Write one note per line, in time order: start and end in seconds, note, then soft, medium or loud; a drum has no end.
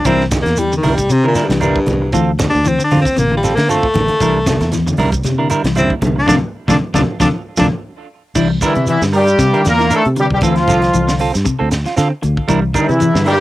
0.05 0.42 C2 medium
0.05 0.26 E3 medium
0.05 0.23 G3 medium
0.05 0.23 C4 loud
0.05 0.23 D4 medium
0.05 0.23 E4 medium
0.05 0.23 A#4 medium
0.05 kick medium
0.05 closed hi-hat medium
0.05 low conga medium
0.05 shekere medium
0.20 snare soft
0.31 muted clean electric guitar stroke soft
0.31 kick medium
0.31 snare medium
0.31 closed hi-hat medium
0.31 high conga loud
0.31 shekere loud
0.42 0.80 E2 medium
0.42 0.60 A#3 medium
0.42 closed hi-hat medium
0.42 shekere soft
0.47 muted clean electric guitar stroke soft
0.47 snare soft
0.57 0.70 E3 medium
0.57 0.75 G3 loud
0.57 muted clean electric guitar stroke soft
0.57 closed hi-hat medium
0.57 shekere medium
0.72 0.93 D3 medium
0.72 muted clean electric guitar stroke soft
0.72 shekere medium
0.77 0.95 D#3 medium
0.83 1.08 C2 medium
0.83 0.98 G3 medium
0.83 0.97 D4 medium
0.83 0.96 E4 medium
0.83 0.96 A#4 medium
0.83 open hi-hat medium
0.83 high conga medium
0.83 low conga medium
0.83 shekere soft
0.94 1.14 G3 medium
0.94 muted clean electric guitar stroke soft
0.98 kick medium
0.98 closed hi-hat medium
0.98 shekere medium
1.09 1.33 C3 medium
1.09 1.21 C3 medium
1.09 1.27 C3 loud
1.09 closed hi-hat medium
1.09 shekere medium
1.24 1.47 A#2 loud
1.24 1.45 D3 medium
1.24 1.34 D4 soft
1.24 1.35 E4 soft
1.24 1.35 A#4 medium
1.35 1.50 G3 medium
1.35 1.49 D4 medium
1.35 1.49 E4 medium
1.35 1.48 A#4 medium
1.35 snare soft
1.35 closed hi-hat medium
1.35 shekere medium
1.45 1.62 G2 medium
1.49 1.73 C2 medium
1.49 1.71 E3 medium
1.49 muted clean electric guitar stroke soft
1.49 snare medium
1.49 closed hi-hat medium
1.49 shekere soft
1.60 2.12 G2 medium
1.60 1.78 G3 medium
1.60 1.78 D4 medium
1.60 1.78 E4 medium
1.60 1.79 A#4 medium
1.60 closed hi-hat medium
1.60 high conga medium
1.60 shekere medium
1.76 kick medium
1.86 2.11 C2 medium
1.86 muted clean electric guitar stroke soft
1.86 closed hi-hat medium
1.86 high conga medium
1.86 low conga medium
1.86 shekere soft
2.02 muted clean electric guitar stroke soft
2.12 2.50 D2 loud
2.12 2.34 E3 medium
2.12 2.30 C4 medium
2.12 2.30 F4 medium
2.12 2.31 A4 medium
2.12 kick medium
2.12 closed hi-hat medium
2.12 shekere medium
2.39 2.59 D3 medium
2.39 muted clean electric guitar stroke soft
2.39 kick medium
2.39 snare medium
2.39 closed hi-hat soft
2.39 high conga loud
2.39 shekere medium
2.50 2.69 D4 loud
2.50 muted clean electric guitar stroke soft
2.55 2.78 D2 medium
2.55 shekere soft
2.64 2.77 E3 medium
2.64 2.84 C4 loud
2.64 muted clean electric guitar stroke soft
2.64 closed hi-hat medium
2.64 shekere medium
2.79 2.99 D3 medium
2.79 muted clean electric guitar stroke soft
2.79 shekere medium
2.84 3.00 D4 medium
2.91 3.05 D3 loud
2.91 3.06 C4 medium
2.91 3.06 F4 medium
2.91 muted clean electric guitar stroke medium
2.91 open hi-hat medium
2.91 high conga medium
2.91 low conga medium
2.91 shekere soft
3.02 3.20 C4 medium
3.02 kick medium
3.06 muted clean electric guitar stroke soft
3.06 shekere medium
3.16 3.54 A1 loud
3.16 3.28 C3 medium
3.16 3.35 A#3 loud
3.16 closed hi-hat medium
3.16 high conga medium
3.16 shekere medium
3.31 3.52 D3 medium
3.31 3.42 F4 soft
3.31 muted clean electric guitar stroke medium
3.37 3.56 G3 medium
3.43 3.58 C4 medium
3.43 3.57 F4 medium
3.43 3.56 A4 medium
3.43 snare soft
3.43 closed hi-hat soft
3.43 shekere loud
3.55 3.81 D3 medium
3.55 3.77 A3 medium
3.55 3.70 A#3 loud
3.55 muted clean electric guitar stroke soft
3.55 snare medium
3.55 closed hi-hat medium
3.59 shekere soft
3.68 4.71 A3 loud
3.68 3.86 C4 medium
3.68 3.86 F4 medium
3.68 3.86 A4 medium
3.68 closed hi-hat medium
3.68 high conga medium
3.68 shekere medium
3.83 kick medium
3.94 4.08 A1 medium
3.94 4.15 D3 medium
3.94 muted clean electric guitar stroke soft
3.94 closed hi-hat soft
3.94 high conga medium
3.94 low conga medium
3.94 shekere soft
4.08 muted clean electric guitar stroke soft
4.08 closed hi-hat soft
4.20 4.57 C2 loud
4.20 4.41 E3 medium
4.20 4.38 G3 medium
4.20 4.38 D4 medium
4.20 4.38 E4 medium
4.20 4.38 A#4 medium
4.20 kick medium
4.20 closed hi-hat medium
4.20 shekere medium
4.46 4.67 C3 medium
4.46 muted clean electric guitar stroke soft
4.46 kick medium
4.46 snare medium
4.46 closed hi-hat medium
4.46 high conga loud
4.46 shekere loud
4.61 4.95 E2 medium
4.61 muted clean electric guitar stroke soft
4.61 snare soft
4.61 closed hi-hat medium
4.61 shekere soft
4.72 4.84 E3 medium
4.72 muted clean electric guitar stroke soft
4.72 snare soft
4.72 closed hi-hat medium
4.72 low conga medium
4.72 shekere medium
4.86 5.07 D3 medium
4.86 muted clean electric guitar stroke medium
4.86 high conga medium
4.86 shekere medium
4.97 5.22 C2 medium
4.97 5.13 G3 medium
4.97 5.12 D4 medium
4.97 5.12 E4 medium
4.97 5.11 A#4 loud
4.97 open hi-hat medium
4.97 high conga medium
4.97 low conga medium
4.97 shekere soft
5.12 muted clean electric guitar stroke soft
5.12 kick medium
5.12 closed hi-hat medium
5.12 shekere medium
5.23 5.36 C3 medium
5.23 5.48 C3 medium
5.23 snare soft
5.23 closed hi-hat medium
5.23 high conga medium
5.23 shekere medium
5.38 5.59 D3 medium
5.38 5.49 D4 medium
5.38 5.49 E4 medium
5.38 5.50 A#4 medium
5.50 5.65 G3 medium
5.50 5.64 D4 medium
5.50 5.64 E4 medium
5.50 5.63 A#4 medium
5.50 closed hi-hat medium
5.50 shekere medium
5.64 5.88 C2 medium
5.64 5.85 E3 medium
5.64 muted clean electric guitar stroke soft
5.64 snare medium
5.64 closed hi-hat medium
5.64 shekere soft
5.75 5.93 G3 medium
5.75 5.91 C4 loud
5.75 5.93 D4 medium
5.75 5.93 E4 medium
5.75 closed hi-hat medium
5.75 high conga medium
5.75 shekere medium
5.90 kick medium
6.02 6.26 C2 medium
6.02 6.23 D3 medium
6.02 muted clean electric guitar stroke soft
6.02 closed hi-hat soft
6.02 high conga medium
6.02 low conga medium
6.02 shekere soft
6.16 6.28 D4 loud
6.16 muted clean electric guitar stroke soft
6.27 6.39 D2 loud
6.27 6.37 C3 loud
6.27 6.37 D3 medium
6.27 6.37 F3 loud
6.27 6.37 D4 loud
6.27 6.35 D4 loud
6.27 6.37 F4 loud
6.27 6.37 A4 loud
6.27 kick medium
6.27 snare medium
6.27 low conga medium
6.27 shekere loud
6.68 6.77 D2 medium
6.68 6.76 C3 medium
6.68 6.76 D3 loud
6.68 6.76 F3 medium
6.68 6.76 D4 loud
6.68 6.77 D4 loud
6.68 6.76 F4 medium
6.68 6.76 A4 medium
6.68 kick medium
6.68 snare medium
6.68 low conga medium
6.68 shekere loud
6.94 7.03 D2 medium
6.94 7.02 C3 loud
6.94 7.02 D3 medium
6.94 7.02 F3 loud
6.94 7.02 D4 loud
6.94 7.01 D4 medium
6.94 7.02 F4 loud
6.94 7.02 A4 loud
6.94 kick medium
6.94 snare medium
6.94 low conga loud
6.94 shekere medium
7.20 7.29 D2 medium
7.20 7.28 C3 medium
7.20 7.28 D3 medium
7.20 7.28 F3 medium
7.20 7.28 D4 medium
7.20 7.28 D4 loud
7.20 7.28 F4 medium
7.20 7.28 A4 medium
7.20 kick medium
7.20 snare medium
7.20 low conga medium
7.20 shekere loud
7.57 7.69 D2 medium
7.57 7.67 C3 medium
7.57 7.67 D3 medium
7.57 7.67 F3 medium
7.57 7.67 D4 loud
7.57 7.66 D4 loud
7.57 7.67 F4 loud
7.57 7.67 A4 medium
7.57 kick medium
7.57 snare medium
7.57 low conga loud
7.57 shekere loud
8.35 8.59 C2 loud
8.35 8.56 E3 loud
8.35 8.50 G3 medium
8.35 8.49 D4 medium
8.35 8.49 E4 medium
8.35 muted clean electric guitar stroke medium
8.35 kick medium
8.35 crash medium
8.35 shekere medium
8.50 muted clean electric guitar stroke soft
8.61 8.87 E2 medium
8.61 8.82 D3 medium
8.61 8.86 E3 medium
8.61 8.87 E3 medium
8.61 8.76 G3 medium
8.61 8.76 D4 medium
8.61 8.75 E4 medium
8.61 8.86 E4 medium
8.61 8.75 A#4 loud
8.61 kick medium
8.61 snare soft
8.61 closed hi-hat medium
8.61 shekere loud
8.75 9.00 C3 medium
8.75 muted clean electric guitar stroke soft
8.75 closed hi-hat soft
8.75 shekere soft
8.87 9.01 E2 medium
8.87 8.99 E3 medium
8.87 9.00 E3 medium
8.87 9.00 E4 loud
8.87 closed hi-hat medium
8.87 shekere medium
9.01 9.36 G2 medium
9.01 9.22 D3 medium
9.01 muted clean electric guitar stroke soft
9.01 snare medium
9.01 shekere medium
9.13 9.62 G2 medium
9.13 9.27 G3 medium
9.13 9.62 G3 loud
9.13 9.63 G3 loud
9.13 9.28 D4 medium
9.13 9.63 G4 loud
9.13 9.26 A#4 medium
9.13 open hi-hat medium
9.13 shekere soft
9.27 muted clean electric guitar stroke soft
9.27 closed hi-hat soft
9.27 shekere medium
9.39 9.52 C3 loud
9.39 9.50 C3 medium
9.39 muted clean electric guitar stroke soft
9.39 kick medium
9.39 snare soft
9.39 closed hi-hat medium
9.39 shekere medium
9.54 9.74 D3 medium
9.54 9.63 G3 medium
9.54 9.63 D4 medium
9.54 9.63 E4 medium
9.54 9.64 A#4 medium
9.54 closed hi-hat soft
9.64 9.89 E2 loud
9.64 9.90 A#2 loud
9.64 9.90 A#3 medium
9.64 muted clean electric guitar stroke soft
9.64 snare medium
9.64 closed hi-hat medium
9.64 shekere loud
9.69 9.91 A#3 loud
9.69 9.91 A#4 loud
9.78 9.99 E3 medium
9.78 9.89 D4 soft
9.78 9.89 E4 soft
9.78 9.90 A#4 medium
9.78 snare soft
9.78 closed hi-hat soft
9.78 shekere soft
9.89 10.04 A2 loud
9.89 10.05 D4 medium
9.89 10.04 E4 medium
9.89 10.04 A#4 medium
9.89 muted clean electric guitar stroke medium
9.89 closed hi-hat medium
9.89 shekere medium
9.95 10.05 A3 medium
9.95 10.06 A3 medium
9.95 10.05 A4 loud
10.05 10.29 C3 loud
10.05 closed hi-hat soft
10.16 10.25 G2 medium
10.16 10.37 D3 medium
10.16 10.25 G3 medium
10.16 10.26 G3 medium
10.16 10.25 G4 loud
10.16 muted clean electric guitar stroke soft
10.16 closed hi-hat medium
10.16 shekere soft
10.30 10.41 C2 medium
10.30 10.38 G2 medium
10.30 10.38 G3 medium
10.30 10.39 G3 medium
10.30 10.39 G4 loud
10.30 kick medium
10.41 10.65 D2 loud
10.41 10.63 E3 loud
10.41 10.57 C4 medium
10.41 10.56 F4 medium
10.41 10.56 A4 medium
10.41 kick medium
10.41 snare soft
10.41 closed hi-hat medium
10.41 shekere medium
10.45 11.18 F2 medium
10.45 11.17 F3 medium
10.45 11.18 F3 medium
10.45 11.18 F4 loud
10.56 snare soft
10.56 closed hi-hat soft
10.67 10.91 C2 medium
10.67 10.88 D3 medium
10.67 10.83 C4 medium
10.67 10.82 F4 medium
10.67 10.81 A4 loud
10.67 kick medium
10.67 snare soft
10.67 closed hi-hat medium
10.67 shekere loud
10.82 muted clean electric guitar stroke soft
10.82 snare soft
10.82 closed hi-hat soft
10.82 shekere soft
10.93 11.31 C2 loud
10.93 11.05 E3 medium
10.93 closed hi-hat medium
10.93 shekere medium
11.08 11.28 D3 medium
11.08 muted clean electric guitar stroke medium
11.08 snare medium
11.08 shekere medium
11.19 11.34 C4 medium
11.19 11.34 F4 medium
11.19 11.33 A4 medium
11.19 open hi-hat medium
11.19 shekere soft
11.34 11.45 G2 medium
11.34 muted clean electric guitar stroke soft
11.34 snare soft
11.34 closed hi-hat soft
11.34 shekere medium
11.45 11.56 C3 medium
11.45 muted clean electric guitar stroke soft
11.45 muted fingered electric bass stroke soft
11.45 kick medium
11.45 closed hi-hat medium
11.45 shekere medium
11.59 11.84 D2 medium
11.59 11.70 C4 medium
11.59 11.70 A4 medium
11.59 muted clean electric guitar stroke medium
11.71 muted clean electric guitar stroke soft
11.71 snare medium
11.71 closed hi-hat medium
11.71 shekere medium
11.85 11.96 F4 soft
11.85 muted clean electric guitar stroke medium
11.85 snare soft
11.85 closed hi-hat soft
11.85 shekere soft
11.96 12.11 D3 loud
11.96 12.11 C4 medium
11.96 12.10 F4 medium
11.96 12.09 A4 medium
11.96 snare soft
11.96 closed hi-hat medium
11.96 shekere medium
12.10 muted clean electric guitar stroke medium
12.22 12.37 D2 loud
12.22 12.43 D3 medium
12.22 muted clean electric guitar stroke soft
12.22 closed hi-hat medium
12.22 shekere soft
12.37 kick medium
12.48 12.72 C2 loud
12.48 12.69 E3 medium
12.48 12.63 G3 medium
12.48 12.61 D4 medium
12.48 12.61 E4 medium
12.48 12.61 A#4 medium
12.48 kick loud
12.48 closed hi-hat medium
12.48 shekere medium
12.62 muted clean electric guitar stroke soft
12.74 13.24 E2 medium
12.74 12.95 D3 medium
12.74 13.24 E3 medium
12.74 12.89 G3 medium
12.74 12.88 D4 medium
12.74 13.24 E4 medium
12.74 12.87 A#4 medium
12.74 kick medium
12.74 closed hi-hat medium
12.74 shekere loud
12.78 13.25 E3 medium
12.89 13.13 C3 medium
12.89 muted clean electric guitar stroke soft
12.89 closed hi-hat soft
12.89 shekere soft
13.00 13.12 E3 medium
13.00 closed hi-hat medium
13.00 shekere medium
13.14 13.40 G2 medium
13.14 13.35 D3 medium
13.14 muted clean electric guitar stroke soft
13.14 snare medium
13.14 shekere medium
13.26 13.40 G2 medium
13.26 13.40 G3 medium
13.26 13.40 G3 loud
13.26 13.40 D4 medium
13.26 13.40 E4 medium
13.26 13.40 G4 loud
13.26 13.39 A#4 medium
13.26 open hi-hat medium
13.26 shekere soft
13.32 13.40 G3 medium